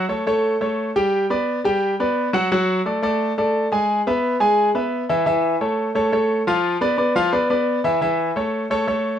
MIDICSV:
0, 0, Header, 1, 2, 480
1, 0, Start_track
1, 0, Key_signature, 3, "major"
1, 0, Tempo, 344234
1, 1574, Time_signature, 4, 2, 24, 8
1, 12817, End_track
2, 0, Start_track
2, 0, Title_t, "Grand piano"
2, 0, Program_c, 0, 0
2, 120, Note_on_c, 0, 57, 59
2, 124, Note_on_c, 0, 69, 69
2, 131, Note_on_c, 0, 73, 63
2, 322, Note_off_c, 0, 57, 0
2, 324, Note_off_c, 0, 69, 0
2, 329, Note_off_c, 0, 73, 0
2, 371, Note_on_c, 0, 57, 79
2, 376, Note_on_c, 0, 69, 77
2, 381, Note_on_c, 0, 73, 80
2, 766, Note_off_c, 0, 57, 0
2, 769, Note_off_c, 0, 69, 0
2, 771, Note_off_c, 0, 73, 0
2, 850, Note_on_c, 0, 57, 74
2, 851, Note_on_c, 0, 69, 67
2, 858, Note_on_c, 0, 73, 69
2, 1246, Note_off_c, 0, 57, 0
2, 1246, Note_off_c, 0, 69, 0
2, 1250, Note_off_c, 0, 73, 0
2, 1337, Note_on_c, 0, 67, 91
2, 1338, Note_on_c, 0, 55, 81
2, 1340, Note_on_c, 0, 79, 89
2, 1730, Note_off_c, 0, 55, 0
2, 1730, Note_off_c, 0, 67, 0
2, 1731, Note_off_c, 0, 79, 0
2, 1815, Note_on_c, 0, 59, 69
2, 1817, Note_on_c, 0, 71, 73
2, 1822, Note_on_c, 0, 74, 73
2, 2209, Note_off_c, 0, 59, 0
2, 2210, Note_off_c, 0, 71, 0
2, 2213, Note_off_c, 0, 74, 0
2, 2294, Note_on_c, 0, 55, 81
2, 2303, Note_on_c, 0, 67, 88
2, 2304, Note_on_c, 0, 79, 88
2, 2689, Note_off_c, 0, 55, 0
2, 2694, Note_off_c, 0, 67, 0
2, 2694, Note_off_c, 0, 79, 0
2, 2786, Note_on_c, 0, 59, 69
2, 2789, Note_on_c, 0, 71, 77
2, 2791, Note_on_c, 0, 74, 68
2, 3176, Note_off_c, 0, 59, 0
2, 3178, Note_off_c, 0, 71, 0
2, 3179, Note_off_c, 0, 74, 0
2, 3252, Note_on_c, 0, 54, 86
2, 3260, Note_on_c, 0, 66, 83
2, 3265, Note_on_c, 0, 78, 85
2, 3451, Note_off_c, 0, 54, 0
2, 3455, Note_off_c, 0, 66, 0
2, 3459, Note_off_c, 0, 78, 0
2, 3509, Note_on_c, 0, 54, 88
2, 3514, Note_on_c, 0, 66, 83
2, 3514, Note_on_c, 0, 78, 74
2, 3898, Note_off_c, 0, 54, 0
2, 3901, Note_off_c, 0, 66, 0
2, 3901, Note_off_c, 0, 78, 0
2, 3982, Note_on_c, 0, 57, 65
2, 3985, Note_on_c, 0, 69, 60
2, 3989, Note_on_c, 0, 74, 65
2, 4177, Note_off_c, 0, 57, 0
2, 4179, Note_off_c, 0, 69, 0
2, 4181, Note_off_c, 0, 74, 0
2, 4216, Note_on_c, 0, 57, 78
2, 4223, Note_on_c, 0, 69, 74
2, 4229, Note_on_c, 0, 74, 76
2, 4611, Note_off_c, 0, 57, 0
2, 4615, Note_off_c, 0, 69, 0
2, 4618, Note_off_c, 0, 74, 0
2, 4711, Note_on_c, 0, 57, 64
2, 4711, Note_on_c, 0, 69, 71
2, 4716, Note_on_c, 0, 74, 69
2, 5099, Note_off_c, 0, 69, 0
2, 5100, Note_off_c, 0, 57, 0
2, 5103, Note_off_c, 0, 74, 0
2, 5182, Note_on_c, 0, 56, 87
2, 5193, Note_on_c, 0, 68, 84
2, 5196, Note_on_c, 0, 80, 76
2, 5574, Note_off_c, 0, 56, 0
2, 5581, Note_off_c, 0, 68, 0
2, 5582, Note_off_c, 0, 80, 0
2, 5674, Note_on_c, 0, 59, 77
2, 5679, Note_on_c, 0, 71, 82
2, 5680, Note_on_c, 0, 76, 78
2, 6062, Note_off_c, 0, 59, 0
2, 6064, Note_off_c, 0, 71, 0
2, 6065, Note_off_c, 0, 76, 0
2, 6135, Note_on_c, 0, 56, 85
2, 6142, Note_on_c, 0, 68, 85
2, 6149, Note_on_c, 0, 80, 90
2, 6530, Note_off_c, 0, 56, 0
2, 6534, Note_off_c, 0, 68, 0
2, 6539, Note_off_c, 0, 80, 0
2, 6620, Note_on_c, 0, 59, 68
2, 6623, Note_on_c, 0, 71, 72
2, 6630, Note_on_c, 0, 76, 70
2, 7013, Note_off_c, 0, 59, 0
2, 7015, Note_off_c, 0, 71, 0
2, 7019, Note_off_c, 0, 76, 0
2, 7103, Note_on_c, 0, 64, 82
2, 7104, Note_on_c, 0, 52, 88
2, 7110, Note_on_c, 0, 76, 85
2, 7298, Note_off_c, 0, 52, 0
2, 7298, Note_off_c, 0, 64, 0
2, 7302, Note_off_c, 0, 76, 0
2, 7335, Note_on_c, 0, 52, 83
2, 7339, Note_on_c, 0, 64, 80
2, 7349, Note_on_c, 0, 76, 84
2, 7730, Note_off_c, 0, 52, 0
2, 7732, Note_off_c, 0, 64, 0
2, 7738, Note_off_c, 0, 76, 0
2, 7821, Note_on_c, 0, 57, 68
2, 7822, Note_on_c, 0, 69, 64
2, 7824, Note_on_c, 0, 73, 65
2, 8214, Note_off_c, 0, 57, 0
2, 8214, Note_off_c, 0, 69, 0
2, 8215, Note_off_c, 0, 73, 0
2, 8294, Note_on_c, 0, 57, 74
2, 8302, Note_on_c, 0, 69, 78
2, 8304, Note_on_c, 0, 73, 76
2, 8493, Note_off_c, 0, 57, 0
2, 8497, Note_off_c, 0, 69, 0
2, 8498, Note_off_c, 0, 73, 0
2, 8539, Note_on_c, 0, 69, 72
2, 8540, Note_on_c, 0, 57, 66
2, 8548, Note_on_c, 0, 73, 71
2, 8932, Note_off_c, 0, 69, 0
2, 8933, Note_off_c, 0, 57, 0
2, 8937, Note_off_c, 0, 73, 0
2, 9023, Note_on_c, 0, 53, 85
2, 9029, Note_on_c, 0, 65, 89
2, 9031, Note_on_c, 0, 77, 89
2, 9414, Note_off_c, 0, 53, 0
2, 9418, Note_off_c, 0, 65, 0
2, 9419, Note_off_c, 0, 77, 0
2, 9495, Note_on_c, 0, 59, 76
2, 9501, Note_on_c, 0, 71, 80
2, 9504, Note_on_c, 0, 74, 79
2, 9693, Note_off_c, 0, 59, 0
2, 9696, Note_off_c, 0, 71, 0
2, 9698, Note_off_c, 0, 74, 0
2, 9728, Note_on_c, 0, 59, 66
2, 9728, Note_on_c, 0, 71, 67
2, 9736, Note_on_c, 0, 74, 71
2, 9928, Note_off_c, 0, 59, 0
2, 9929, Note_off_c, 0, 71, 0
2, 9933, Note_off_c, 0, 74, 0
2, 9977, Note_on_c, 0, 53, 85
2, 9979, Note_on_c, 0, 65, 91
2, 9985, Note_on_c, 0, 77, 96
2, 10174, Note_off_c, 0, 53, 0
2, 10175, Note_off_c, 0, 65, 0
2, 10179, Note_off_c, 0, 77, 0
2, 10215, Note_on_c, 0, 71, 80
2, 10216, Note_on_c, 0, 59, 71
2, 10221, Note_on_c, 0, 74, 77
2, 10412, Note_off_c, 0, 71, 0
2, 10413, Note_off_c, 0, 59, 0
2, 10416, Note_off_c, 0, 74, 0
2, 10458, Note_on_c, 0, 59, 73
2, 10459, Note_on_c, 0, 71, 72
2, 10465, Note_on_c, 0, 74, 74
2, 10851, Note_off_c, 0, 59, 0
2, 10851, Note_off_c, 0, 71, 0
2, 10855, Note_off_c, 0, 74, 0
2, 10934, Note_on_c, 0, 52, 84
2, 10939, Note_on_c, 0, 64, 94
2, 10947, Note_on_c, 0, 76, 85
2, 11132, Note_off_c, 0, 52, 0
2, 11134, Note_off_c, 0, 64, 0
2, 11139, Note_off_c, 0, 76, 0
2, 11174, Note_on_c, 0, 52, 84
2, 11180, Note_on_c, 0, 64, 81
2, 11185, Note_on_c, 0, 76, 83
2, 11568, Note_off_c, 0, 52, 0
2, 11571, Note_off_c, 0, 64, 0
2, 11574, Note_off_c, 0, 76, 0
2, 11656, Note_on_c, 0, 57, 67
2, 11657, Note_on_c, 0, 69, 66
2, 11668, Note_on_c, 0, 73, 71
2, 12049, Note_off_c, 0, 57, 0
2, 12049, Note_off_c, 0, 69, 0
2, 12056, Note_off_c, 0, 73, 0
2, 12136, Note_on_c, 0, 57, 71
2, 12143, Note_on_c, 0, 69, 86
2, 12144, Note_on_c, 0, 73, 82
2, 12332, Note_off_c, 0, 57, 0
2, 12336, Note_off_c, 0, 69, 0
2, 12337, Note_off_c, 0, 73, 0
2, 12375, Note_on_c, 0, 57, 73
2, 12375, Note_on_c, 0, 69, 76
2, 12383, Note_on_c, 0, 73, 73
2, 12768, Note_off_c, 0, 57, 0
2, 12768, Note_off_c, 0, 69, 0
2, 12773, Note_off_c, 0, 73, 0
2, 12817, End_track
0, 0, End_of_file